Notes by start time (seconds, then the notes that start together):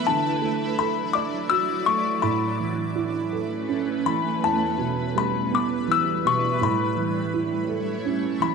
Already playing: E4
0.06 D3 F#3 D5 A5
0.41 A3
0.78 A4 B5
1.13 D5 D6
1.50 F#4 E6
1.86 A3 C#6
2.22 A2 A3 C#4 B4 B5
2.60 E3
2.96 E4
3.32 A4
3.69 C#4
4.06 E3 B5
4.42 E2 G3 E4 B4 A5
4.78 B2
5.15 G3 B5
5.51 B3 D6
5.88 E3 E6
6.25 B2 C#6
6.61 A2 A3 E4 C#5 B5
6.97 E3
7.34 E4
7.69 A4
8.05 C#4
8.40 E3 B5